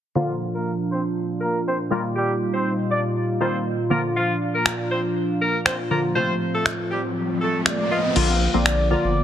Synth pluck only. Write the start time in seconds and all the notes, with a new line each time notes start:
0.15 D3 F3 A#3 F4
1.91 D#3 G3 A#3 F4
3.41 D#3 G3 A#3 F4
3.90 D3 F3 A#3 F4
5.91 D3 F3 A#3 F4
6.15 C3 F3 A3 F4
8.16 D3 F3 A#3 F4
8.54 D3 F3 A#3 C4
8.91 D3 F3 A#3 F4